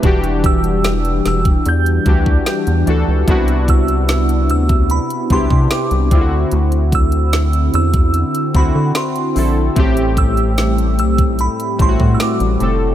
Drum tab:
HH |xxxxxxxxxxx-xxx-|xxxxxxxxxxx-xxx-|xxxxxxxxxxx-xxo-|xxxxxxxxxxx-xxx-|
SD |----o-o-----o---|----o-------o---|----o-------o---|----o-------o---|
BD |o-o----o--oo----|o-o----o--oo--o-|--o----o--o-----|o-o----o--oo----|